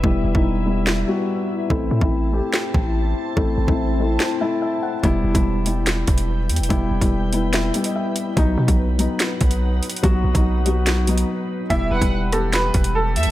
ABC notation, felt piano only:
X:1
M:4/4
L:1/16
Q:1/4=144
K:Em
V:1 name="Felt piano"
z16 | z16 | z6 A2 c2 e2 e2 f2 | z16 |
z6 B2 e3 ^d e4 | z16 | z16 | z16 |]
V:2 name="Felt piano"
[G,B,E]3 [G,B,^D]3 [G,B,E]3 z [G,B,F]4- [G,B,F] z | [A,CE]3 [A,CE]3 [A,CG]6- [A,CG] z3 | [A,CE]3 [A,CE]3 [A,CE]3 z [A,CE]4- [A,CE] z | [G,B,E]3 [G,B,E]3 [G,B,E]6- [G,B,E] z3 |
[G,B,E]3 [G,B,E]3 [G,B,E]3 z [G,B,E]4- [G,B,E] z | [F,B,^D]3 [F,B,D]3 [F,B,D]6- [F,B,D] z3 | [F,B,F]3 [F,B,^D]3 [F,B,F]3 z [F,B,D]4- [F,B,D] z | [G,B,E]3 [G,B,E]3 [G,B,G]6- [G,B,G] z3 |]